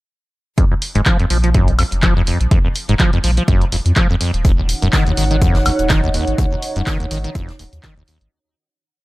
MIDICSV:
0, 0, Header, 1, 5, 480
1, 0, Start_track
1, 0, Tempo, 483871
1, 573, Time_signature, 4, 2, 24, 8
1, 8974, End_track
2, 0, Start_track
2, 0, Title_t, "Analog synth pad"
2, 0, Program_c, 0, 89
2, 4410, Note_on_c, 0, 63, 77
2, 4410, Note_on_c, 0, 78, 82
2, 4411, Note_on_c, 0, 73, 70
2, 8213, Note_off_c, 0, 63, 0
2, 8213, Note_off_c, 0, 78, 0
2, 8214, Note_off_c, 0, 73, 0
2, 8974, End_track
3, 0, Start_track
3, 0, Title_t, "Acid bass"
3, 0, Program_c, 1, 38
3, 572, Note_on_c, 1, 41, 76
3, 646, Note_off_c, 1, 41, 0
3, 705, Note_on_c, 1, 41, 71
3, 741, Note_off_c, 1, 41, 0
3, 945, Note_on_c, 1, 44, 99
3, 1005, Note_off_c, 1, 44, 0
3, 1052, Note_on_c, 1, 53, 96
3, 1162, Note_off_c, 1, 53, 0
3, 1185, Note_on_c, 1, 41, 95
3, 1245, Note_off_c, 1, 41, 0
3, 1292, Note_on_c, 1, 53, 72
3, 1366, Note_off_c, 1, 53, 0
3, 1425, Note_on_c, 1, 53, 76
3, 1484, Note_off_c, 1, 53, 0
3, 1532, Note_on_c, 1, 42, 94
3, 1666, Note_on_c, 1, 41, 72
3, 1681, Note_off_c, 1, 42, 0
3, 1702, Note_off_c, 1, 41, 0
3, 1774, Note_on_c, 1, 41, 71
3, 1817, Note_off_c, 1, 41, 0
3, 2014, Note_on_c, 1, 53, 91
3, 2123, Note_off_c, 1, 53, 0
3, 2147, Note_on_c, 1, 41, 94
3, 2206, Note_off_c, 1, 41, 0
3, 2256, Note_on_c, 1, 41, 72
3, 2364, Note_off_c, 1, 41, 0
3, 2494, Note_on_c, 1, 41, 82
3, 2567, Note_off_c, 1, 41, 0
3, 2626, Note_on_c, 1, 41, 72
3, 2661, Note_off_c, 1, 41, 0
3, 2865, Note_on_c, 1, 44, 103
3, 2925, Note_off_c, 1, 44, 0
3, 2973, Note_on_c, 1, 53, 99
3, 3082, Note_off_c, 1, 53, 0
3, 3105, Note_on_c, 1, 41, 97
3, 3165, Note_off_c, 1, 41, 0
3, 3214, Note_on_c, 1, 53, 77
3, 3287, Note_off_c, 1, 53, 0
3, 3347, Note_on_c, 1, 53, 77
3, 3406, Note_off_c, 1, 53, 0
3, 3453, Note_on_c, 1, 42, 96
3, 3586, Note_on_c, 1, 41, 72
3, 3601, Note_off_c, 1, 42, 0
3, 3621, Note_off_c, 1, 41, 0
3, 3693, Note_on_c, 1, 41, 72
3, 3737, Note_off_c, 1, 41, 0
3, 3933, Note_on_c, 1, 53, 94
3, 4043, Note_off_c, 1, 53, 0
3, 4065, Note_on_c, 1, 41, 95
3, 4125, Note_off_c, 1, 41, 0
3, 4173, Note_on_c, 1, 41, 77
3, 4283, Note_off_c, 1, 41, 0
3, 4412, Note_on_c, 1, 39, 78
3, 4486, Note_off_c, 1, 39, 0
3, 4546, Note_on_c, 1, 39, 69
3, 4581, Note_off_c, 1, 39, 0
3, 4785, Note_on_c, 1, 42, 102
3, 4845, Note_off_c, 1, 42, 0
3, 4893, Note_on_c, 1, 51, 104
3, 5003, Note_off_c, 1, 51, 0
3, 5026, Note_on_c, 1, 39, 93
3, 5085, Note_off_c, 1, 39, 0
3, 5132, Note_on_c, 1, 51, 73
3, 5206, Note_off_c, 1, 51, 0
3, 5264, Note_on_c, 1, 51, 77
3, 5324, Note_off_c, 1, 51, 0
3, 5372, Note_on_c, 1, 41, 96
3, 5504, Note_on_c, 1, 39, 75
3, 5519, Note_off_c, 1, 41, 0
3, 5540, Note_off_c, 1, 39, 0
3, 5611, Note_on_c, 1, 39, 77
3, 5656, Note_off_c, 1, 39, 0
3, 5853, Note_on_c, 1, 51, 93
3, 5963, Note_off_c, 1, 51, 0
3, 5985, Note_on_c, 1, 39, 100
3, 6044, Note_off_c, 1, 39, 0
3, 6092, Note_on_c, 1, 39, 75
3, 6202, Note_off_c, 1, 39, 0
3, 6332, Note_on_c, 1, 39, 86
3, 6406, Note_off_c, 1, 39, 0
3, 6465, Note_on_c, 1, 39, 75
3, 6501, Note_off_c, 1, 39, 0
3, 6705, Note_on_c, 1, 42, 103
3, 6765, Note_off_c, 1, 42, 0
3, 6813, Note_on_c, 1, 51, 101
3, 6923, Note_off_c, 1, 51, 0
3, 6945, Note_on_c, 1, 39, 96
3, 7004, Note_off_c, 1, 39, 0
3, 7053, Note_on_c, 1, 51, 76
3, 7126, Note_off_c, 1, 51, 0
3, 7185, Note_on_c, 1, 51, 78
3, 7244, Note_off_c, 1, 51, 0
3, 7291, Note_on_c, 1, 41, 101
3, 7424, Note_on_c, 1, 39, 71
3, 7439, Note_off_c, 1, 41, 0
3, 7460, Note_off_c, 1, 39, 0
3, 7531, Note_on_c, 1, 39, 73
3, 7576, Note_off_c, 1, 39, 0
3, 7770, Note_on_c, 1, 51, 95
3, 7881, Note_off_c, 1, 51, 0
3, 7903, Note_on_c, 1, 39, 96
3, 7963, Note_off_c, 1, 39, 0
3, 8011, Note_on_c, 1, 39, 74
3, 8122, Note_off_c, 1, 39, 0
3, 8974, End_track
4, 0, Start_track
4, 0, Title_t, "Sub bass"
4, 0, Program_c, 2, 38
4, 946, Note_on_c, 2, 29, 101
4, 1012, Note_off_c, 2, 29, 0
4, 1293, Note_on_c, 2, 34, 96
4, 1825, Note_off_c, 2, 34, 0
4, 1906, Note_on_c, 2, 29, 85
4, 2305, Note_off_c, 2, 29, 0
4, 2386, Note_on_c, 2, 34, 103
4, 2453, Note_off_c, 2, 34, 0
4, 2866, Note_on_c, 2, 29, 98
4, 2932, Note_off_c, 2, 29, 0
4, 3212, Note_on_c, 2, 34, 96
4, 3371, Note_off_c, 2, 34, 0
4, 3453, Note_on_c, 2, 29, 106
4, 3612, Note_off_c, 2, 29, 0
4, 3692, Note_on_c, 2, 29, 78
4, 3775, Note_off_c, 2, 29, 0
4, 3825, Note_on_c, 2, 41, 95
4, 3892, Note_off_c, 2, 41, 0
4, 4304, Note_on_c, 2, 27, 107
4, 4705, Note_off_c, 2, 27, 0
4, 4785, Note_on_c, 2, 27, 103
4, 4852, Note_off_c, 2, 27, 0
4, 5133, Note_on_c, 2, 32, 93
4, 5665, Note_off_c, 2, 32, 0
4, 5746, Note_on_c, 2, 27, 88
4, 6145, Note_off_c, 2, 27, 0
4, 6226, Note_on_c, 2, 32, 99
4, 6293, Note_off_c, 2, 32, 0
4, 6706, Note_on_c, 2, 27, 104
4, 6773, Note_off_c, 2, 27, 0
4, 7054, Note_on_c, 2, 32, 98
4, 7212, Note_off_c, 2, 32, 0
4, 7293, Note_on_c, 2, 27, 106
4, 7452, Note_off_c, 2, 27, 0
4, 7533, Note_on_c, 2, 27, 79
4, 7616, Note_off_c, 2, 27, 0
4, 7666, Note_on_c, 2, 39, 94
4, 7732, Note_off_c, 2, 39, 0
4, 8146, Note_on_c, 2, 32, 82
4, 8212, Note_off_c, 2, 32, 0
4, 8974, End_track
5, 0, Start_track
5, 0, Title_t, "Drums"
5, 573, Note_on_c, 9, 36, 108
5, 574, Note_on_c, 9, 42, 66
5, 672, Note_off_c, 9, 36, 0
5, 673, Note_off_c, 9, 42, 0
5, 812, Note_on_c, 9, 46, 96
5, 911, Note_off_c, 9, 46, 0
5, 946, Note_on_c, 9, 42, 49
5, 1045, Note_off_c, 9, 42, 0
5, 1050, Note_on_c, 9, 39, 114
5, 1053, Note_on_c, 9, 36, 104
5, 1053, Note_on_c, 9, 42, 58
5, 1149, Note_off_c, 9, 39, 0
5, 1152, Note_off_c, 9, 36, 0
5, 1152, Note_off_c, 9, 42, 0
5, 1186, Note_on_c, 9, 42, 34
5, 1285, Note_off_c, 9, 42, 0
5, 1292, Note_on_c, 9, 46, 101
5, 1391, Note_off_c, 9, 46, 0
5, 1425, Note_on_c, 9, 42, 50
5, 1524, Note_off_c, 9, 42, 0
5, 1532, Note_on_c, 9, 42, 65
5, 1533, Note_on_c, 9, 36, 107
5, 1631, Note_off_c, 9, 42, 0
5, 1632, Note_off_c, 9, 36, 0
5, 1666, Note_on_c, 9, 42, 36
5, 1765, Note_off_c, 9, 42, 0
5, 1772, Note_on_c, 9, 46, 96
5, 1772, Note_on_c, 9, 76, 69
5, 1871, Note_off_c, 9, 46, 0
5, 1871, Note_off_c, 9, 76, 0
5, 1906, Note_on_c, 9, 42, 54
5, 2005, Note_off_c, 9, 42, 0
5, 2009, Note_on_c, 9, 39, 116
5, 2012, Note_on_c, 9, 42, 66
5, 2013, Note_on_c, 9, 36, 109
5, 2109, Note_off_c, 9, 39, 0
5, 2112, Note_off_c, 9, 36, 0
5, 2112, Note_off_c, 9, 42, 0
5, 2253, Note_on_c, 9, 46, 88
5, 2352, Note_off_c, 9, 46, 0
5, 2386, Note_on_c, 9, 42, 49
5, 2486, Note_off_c, 9, 42, 0
5, 2493, Note_on_c, 9, 36, 121
5, 2493, Note_on_c, 9, 42, 62
5, 2592, Note_off_c, 9, 36, 0
5, 2592, Note_off_c, 9, 42, 0
5, 2733, Note_on_c, 9, 46, 101
5, 2833, Note_off_c, 9, 46, 0
5, 2866, Note_on_c, 9, 42, 47
5, 2965, Note_off_c, 9, 42, 0
5, 2970, Note_on_c, 9, 39, 114
5, 2973, Note_on_c, 9, 36, 109
5, 2973, Note_on_c, 9, 42, 63
5, 3070, Note_off_c, 9, 39, 0
5, 3072, Note_off_c, 9, 36, 0
5, 3073, Note_off_c, 9, 42, 0
5, 3106, Note_on_c, 9, 42, 33
5, 3205, Note_off_c, 9, 42, 0
5, 3212, Note_on_c, 9, 46, 101
5, 3311, Note_off_c, 9, 46, 0
5, 3346, Note_on_c, 9, 42, 51
5, 3445, Note_off_c, 9, 42, 0
5, 3452, Note_on_c, 9, 36, 110
5, 3454, Note_on_c, 9, 42, 62
5, 3552, Note_off_c, 9, 36, 0
5, 3553, Note_off_c, 9, 42, 0
5, 3586, Note_on_c, 9, 42, 37
5, 3685, Note_off_c, 9, 42, 0
5, 3693, Note_on_c, 9, 46, 102
5, 3792, Note_off_c, 9, 46, 0
5, 3826, Note_on_c, 9, 42, 51
5, 3925, Note_off_c, 9, 42, 0
5, 3930, Note_on_c, 9, 39, 120
5, 3932, Note_on_c, 9, 36, 114
5, 3933, Note_on_c, 9, 42, 68
5, 4030, Note_off_c, 9, 39, 0
5, 4031, Note_off_c, 9, 36, 0
5, 4033, Note_off_c, 9, 42, 0
5, 4173, Note_on_c, 9, 46, 99
5, 4272, Note_off_c, 9, 46, 0
5, 4306, Note_on_c, 9, 42, 49
5, 4405, Note_off_c, 9, 42, 0
5, 4412, Note_on_c, 9, 36, 119
5, 4412, Note_on_c, 9, 42, 64
5, 4414, Note_off_c, 9, 42, 0
5, 4414, Note_on_c, 9, 42, 74
5, 4511, Note_off_c, 9, 36, 0
5, 4513, Note_off_c, 9, 42, 0
5, 4652, Note_on_c, 9, 46, 105
5, 4655, Note_on_c, 9, 42, 66
5, 4751, Note_off_c, 9, 46, 0
5, 4754, Note_off_c, 9, 42, 0
5, 4785, Note_on_c, 9, 42, 46
5, 4884, Note_off_c, 9, 42, 0
5, 4889, Note_on_c, 9, 39, 116
5, 4892, Note_on_c, 9, 36, 114
5, 4892, Note_on_c, 9, 42, 60
5, 4895, Note_on_c, 9, 38, 110
5, 4899, Note_off_c, 9, 42, 0
5, 4899, Note_on_c, 9, 42, 82
5, 4989, Note_off_c, 9, 39, 0
5, 4991, Note_off_c, 9, 36, 0
5, 4995, Note_off_c, 9, 38, 0
5, 4998, Note_off_c, 9, 42, 0
5, 5025, Note_on_c, 9, 42, 33
5, 5124, Note_off_c, 9, 42, 0
5, 5132, Note_on_c, 9, 46, 105
5, 5139, Note_on_c, 9, 42, 61
5, 5231, Note_off_c, 9, 46, 0
5, 5238, Note_off_c, 9, 42, 0
5, 5266, Note_on_c, 9, 42, 51
5, 5365, Note_off_c, 9, 42, 0
5, 5372, Note_on_c, 9, 36, 118
5, 5373, Note_on_c, 9, 42, 87
5, 5471, Note_off_c, 9, 36, 0
5, 5472, Note_off_c, 9, 42, 0
5, 5506, Note_on_c, 9, 42, 36
5, 5507, Note_on_c, 9, 38, 48
5, 5605, Note_off_c, 9, 42, 0
5, 5607, Note_off_c, 9, 38, 0
5, 5607, Note_on_c, 9, 42, 70
5, 5613, Note_on_c, 9, 46, 107
5, 5613, Note_on_c, 9, 76, 74
5, 5706, Note_off_c, 9, 42, 0
5, 5712, Note_off_c, 9, 46, 0
5, 5712, Note_off_c, 9, 76, 0
5, 5744, Note_on_c, 9, 42, 38
5, 5745, Note_off_c, 9, 42, 0
5, 5745, Note_on_c, 9, 42, 51
5, 5844, Note_off_c, 9, 42, 0
5, 5848, Note_on_c, 9, 38, 114
5, 5849, Note_on_c, 9, 39, 118
5, 5849, Note_on_c, 9, 42, 92
5, 5852, Note_off_c, 9, 42, 0
5, 5852, Note_on_c, 9, 36, 121
5, 5852, Note_on_c, 9, 42, 64
5, 5947, Note_off_c, 9, 38, 0
5, 5948, Note_off_c, 9, 39, 0
5, 5951, Note_off_c, 9, 42, 0
5, 5952, Note_off_c, 9, 36, 0
5, 6092, Note_on_c, 9, 46, 104
5, 6191, Note_off_c, 9, 46, 0
5, 6225, Note_on_c, 9, 42, 50
5, 6324, Note_off_c, 9, 42, 0
5, 6332, Note_on_c, 9, 36, 119
5, 6332, Note_on_c, 9, 42, 64
5, 6335, Note_off_c, 9, 42, 0
5, 6335, Note_on_c, 9, 42, 87
5, 6432, Note_off_c, 9, 36, 0
5, 6434, Note_off_c, 9, 42, 0
5, 6572, Note_on_c, 9, 46, 108
5, 6574, Note_on_c, 9, 42, 57
5, 6671, Note_off_c, 9, 46, 0
5, 6673, Note_off_c, 9, 42, 0
5, 6705, Note_on_c, 9, 42, 46
5, 6804, Note_off_c, 9, 42, 0
5, 6810, Note_on_c, 9, 39, 112
5, 6813, Note_on_c, 9, 36, 113
5, 6813, Note_on_c, 9, 42, 58
5, 6814, Note_on_c, 9, 38, 112
5, 6816, Note_off_c, 9, 42, 0
5, 6816, Note_on_c, 9, 42, 82
5, 6909, Note_off_c, 9, 39, 0
5, 6912, Note_off_c, 9, 36, 0
5, 6913, Note_off_c, 9, 38, 0
5, 6915, Note_off_c, 9, 42, 0
5, 6946, Note_on_c, 9, 42, 31
5, 7045, Note_off_c, 9, 42, 0
5, 7053, Note_on_c, 9, 42, 65
5, 7053, Note_on_c, 9, 46, 108
5, 7152, Note_off_c, 9, 42, 0
5, 7152, Note_off_c, 9, 46, 0
5, 7186, Note_on_c, 9, 42, 50
5, 7285, Note_off_c, 9, 42, 0
5, 7292, Note_on_c, 9, 42, 91
5, 7293, Note_off_c, 9, 42, 0
5, 7293, Note_on_c, 9, 36, 122
5, 7293, Note_on_c, 9, 42, 61
5, 7392, Note_off_c, 9, 36, 0
5, 7392, Note_off_c, 9, 42, 0
5, 7426, Note_on_c, 9, 42, 36
5, 7432, Note_on_c, 9, 38, 38
5, 7525, Note_off_c, 9, 42, 0
5, 7531, Note_off_c, 9, 38, 0
5, 7532, Note_on_c, 9, 46, 104
5, 7540, Note_on_c, 9, 42, 62
5, 7632, Note_off_c, 9, 46, 0
5, 7639, Note_off_c, 9, 42, 0
5, 7665, Note_on_c, 9, 42, 44
5, 7666, Note_off_c, 9, 42, 0
5, 7666, Note_on_c, 9, 42, 48
5, 7765, Note_off_c, 9, 42, 0
5, 7770, Note_on_c, 9, 39, 121
5, 7773, Note_on_c, 9, 36, 120
5, 7773, Note_on_c, 9, 42, 85
5, 7776, Note_on_c, 9, 38, 112
5, 7869, Note_off_c, 9, 39, 0
5, 7872, Note_off_c, 9, 36, 0
5, 7873, Note_off_c, 9, 42, 0
5, 7875, Note_off_c, 9, 38, 0
5, 8013, Note_on_c, 9, 42, 67
5, 8013, Note_on_c, 9, 46, 100
5, 8112, Note_off_c, 9, 42, 0
5, 8112, Note_off_c, 9, 46, 0
5, 8146, Note_on_c, 9, 42, 51
5, 8245, Note_off_c, 9, 42, 0
5, 8974, End_track
0, 0, End_of_file